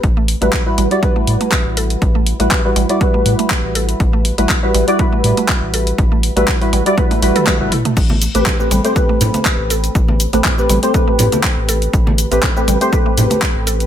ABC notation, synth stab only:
X:1
M:4/4
L:1/16
Q:"Swing 16ths" 1/4=121
K:Ador
V:1 name="Synth stab"
z3 [G,EFB]2 [G,EFB]2 [G,EFd] [G,EFB]8- | [G,EFB]3 [G,EFB]2 [G,EFB]2 [G,EFd] [G,EFB]8- | [G,EFB]3 [G,EFB]2 [G,EFB]2 [G,EFd] [G,EFB]8- | [G,EFB]3 [G,EFB]2 [G,EFB]2 [G,EFd] [G,EFB]2 [G,EFB]2 [G,EFB] [G,EFB] z2 |
z3 [A,CGB]2 [A,CGB]2 [A,CGc] [A,CGB]8- | [A,CGB]3 [A,CGB]2 [A,CGB]2 [A,CGc] [A,CGB]8- | [A,CGB]3 [A,CGB]2 [A,CGB]2 [A,CGc] [A,CGB]8 |]